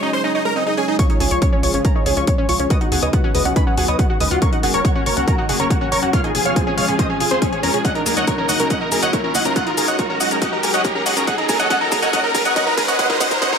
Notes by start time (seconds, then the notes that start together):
Already playing: C#3 F#3 G#3 D#4 G#4
0.03 C#4 D#4 D#5
0.13 C#4 C5 C6
0.24 C#4 D#4 D#5
0.35 D#4 C#5 D#5
0.45 G#3 A#4 A#5
0.56 C4 D#4 D#5
0.66 D#4 G#4 D#5
0.77 C#4 G#4 G#5
0.88 D#4 G#4 D#5
0.99 C#3 F3 G#3 C#4 F4 G#4 C#5 C#6, kick, closed hi-hat, riser
1.10 C#4 D#4 C#5, closed hi-hat
1.20 C#2 C#4 G#4 C#5, open hi-hat
1.31 C#2 F4 C#5 C#6, closed hi-hat
1.42 C#4 C#5, kick, closed hi-hat
1.53 C#4 C#5
1.63 C#2 F4 C#5 C#6, open hi-hat
1.74 G#1 C#4 C#5, closed hi-hat
1.85 C#4 A#4 A#5, kick, closed hi-hat
1.95 C#4 D#4 C#5
2.06 C#2 C#4 G#4 C#5, open hi-hat
2.17 C#2 C#4 F4 C#5 C#6, closed hi-hat
2.27 C#4 C#5, kick, closed hi-hat
2.38 C#4 C#5
2.49 C#2 F4 C#5 C#6, open hi-hat
2.60 C#2 C#4 C#5, closed hi-hat
2.70 F#3 B3 D#4 F#4 B4 D#5 D#6, kick, closed hi-hat
2.81 D#4 F#4 F#5, closed hi-hat
2.92 D#2 F#4 G#4 F#5, open hi-hat
3.02 D#2 B4 C#5 D#5 D#6, closed hi-hat
3.13 B3 F#4 F#5, kick, closed hi-hat
3.24 C#4 F#4 F#5
3.35 D#2 G#3 B4 D#5 D#6, open hi-hat
3.45 C#2 C#4 F#4 F#5, closed hi-hat
3.56 C#4 D#4 B4 B5, kick, closed hi-hat
3.67 C#4 F#4 F#5
3.77 D#2 F#4 G#4 F#5, open hi-hat
3.88 D#2 B4 C#5 D#5 D#6, closed hi-hat
3.99 B3 F#4 F#5, kick, closed hi-hat
4.10 F#4 F#5
4.20 D#2 G#3 B4 D#5 D#6, open hi-hat
4.31 D#2 F4 F#4 F#5, closed hi-hat
4.42 C#3 A#3 C#4 A#4 C#5 C#6, kick, closed hi-hat
4.52 D#4 F#4 F#5, closed hi-hat
4.63 F#1 F#4 G#4 F#5, open hi-hat
4.74 F#1 A#4 C#5 C#6, closed hi-hat
4.85 F#4 C#5 F#5, kick, closed hi-hat
4.95 C#4 F#4 F#5
5.06 F#1 A#4 C#5 C#6, open hi-hat
5.17 C#2 C#4 F#4 F#5, closed hi-hat
5.27 C#4 F#4 A#4 A#5, kick, closed hi-hat
5.38 D#4 F#4 F#5
5.49 F#1 F#4 G#4 F#5, open hi-hat
5.60 F#1 C#4 A#4 C#5 C#6, closed hi-hat
5.70 C#4 F#4 F#5, kick, closed hi-hat
5.81 C#4 F#4 F#5
5.92 F#1 A#4 C#5 C#6, open hi-hat
6.02 F#1 C#4 F#4 F#5, closed hi-hat
6.13 F3 G#3 F4 G#4 C#5 F5 F6, kick, closed hi-hat
6.24 D#4 G#4 G#5, closed hi-hat
6.35 F1 G#4 G#5, open hi-hat
6.45 F1 C#5 F5 F6, closed hi-hat
6.56 C4 G#4 G#5, kick, closed hi-hat
6.67 C#4 G#4 G#5
6.77 F1 G#3 C#5 F5 F6, open hi-hat
6.88 D#1 C#4 G#4 G#5, closed hi-hat
6.99 C#4 C5 D#5 D#6, kick, closed hi-hat
7.10 C#4 G#4 G#5
7.20 F1 F4 G#4 G#5, open hi-hat
7.31 F1 C4 G#4 C5 C6, closed hi-hat
7.42 C#4 G#4 G#5, kick, closed hi-hat
7.52 G#4 C#5 G#5, closed hi-hat
7.63 F2 C#4 G#4 A#4 A#5, open hi-hat
7.74 F1 C#4 G#4 G#5, closed hi-hat
7.84 F#3 A#3 C#4 D#4 F#4 D#5 F#5 F#6, kick, closed hi-hat, shaker
7.95 D#4 A#4 A#5, closed hi-hat
8.06 D#2 G#4 A#4 A#5, open hi-hat, shaker
8.17 D#2 C#5 D#5 F#5 F#6, closed hi-hat, shaker
8.27 A#4 C#5 A#5, kick, closed hi-hat, shaker
8.38 C#4 A#4 A#5
8.49 D#2 C#5 D#5 F#5 F#6, open hi-hat, shaker
8.60 C#2 C#4 A#4 A#5, closed hi-hat, shaker
8.70 C#4 D#5 F#5 F#6, kick, closed hi-hat, shaker
8.81 D#4 A#4 A#5
8.92 D#2 G#4 A#4 A#5, open hi-hat, shaker
9.02 D#2 C#5 D#5 F#5 F#6, closed hi-hat, shaker
9.13 A#4 C#5 A#5, kick, closed hi-hat, shaker
9.24 C#4 A#4 A#5
9.35 D#2 C#5 D#5 F#5 F#6, open hi-hat, shaker
9.45 D#2 C#4 A#4 A#5, closed hi-hat, shaker
9.56 G#3 C#4 F#4 D#5 F#5 F#6, kick, closed hi-hat, shaker
9.67 D#4 A#4 A#5, closed hi-hat
9.77 G#1 G#4 A#4 A#5, open hi-hat, shaker
9.88 G#1 C#5 D#5 F#5 F#6, shaker
9.99 A#4 C#5 A#5, kick, closed hi-hat, shaker
10.10 C#4 A#4 A#5
10.20 G#1 C#5 D#5 F#5 F#6, open hi-hat, shaker
10.31 F#1 C#4 A#4 A#5, closed hi-hat, shaker
10.42 C#4 D#5 F#5 F#6, kick, closed hi-hat, shaker
10.53 D#4 A#4 A#5
10.63 G#1 G#4 A#4 A#5, open hi-hat, shaker
10.74 G#1 C#5 D#5 F#5 F#6, closed hi-hat, shaker
10.85 A#4 C#5 A#5, kick, closed hi-hat, shaker
10.95 C#4 A#4 A#5
11.06 G#1 C#5 D#5 F#5 F#6, open hi-hat, shaker
11.17 G#1 C#4 A#4 A#5, closed hi-hat, shaker
11.27 A#2 C#4 D#5 F#5 F#6, kick, closed hi-hat, shaker
11.38 D#4 A#4 A#5, closed hi-hat
11.49 F#1 G#4 A#4 A#5, kick, open hi-hat, shaker
11.60 F#1 C#5 D#5 F#5 F#6, closed hi-hat, shaker
11.70 C#4 D#5 F#5 F#6, kick, closed hi-hat, shaker
11.81 D#4 A#4 A#5
11.92 F#1 G#4 A#4 A#5, kick, open hi-hat, shaker
12.02 C#2 C#5 D#5 F#5 F#6, closed hi-hat, shaker
12.13 C#4 D#5 F#5 F#6, kick, closed hi-hat, shaker
12.24 D#4 A#4 A#5
12.34 F#1 G#4 A#4 A#5, kick, open hi-hat, shaker
12.45 F#1 C#5 D#5 F#5 F#6, closed hi-hat, shaker
12.56 C#4 D#5 F#5 F#6, kick, closed hi-hat, shaker
12.67 D#4 A#4 A#5
12.77 F#1 G#4 A#4 A#5, kick, open hi-hat, shaker
12.88 F#1 C#5 D#5 F#5 F#6, closed hi-hat, shaker
12.99 D#3 F#3 G#3 C#4 D#5 F#5 F#6, kick, closed hi-hat, shaker
13.10 D#4 A#4 A#5, kick, closed hi-hat
13.20 G#1 C#4 D#5 F#5 F#6, kick, open hi-hat, shaker
13.31 G#1 D#4 A#4 A#5, kick, closed hi-hat, shaker
13.42 C#4 D#5 F#5 F#6, kick, closed hi-hat, shaker
13.52 D#4 A#4 A#5, kick